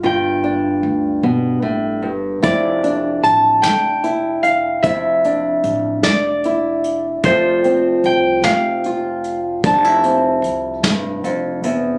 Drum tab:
HH |------|xxxxxx|xxxxxx|xxxxxx|
SD |------|---o--|---o--|---o--|
BD |------|o--o--|o--o--|o--o--|

HH |xxxxxx|
SD |---o--|
BD |o--o--|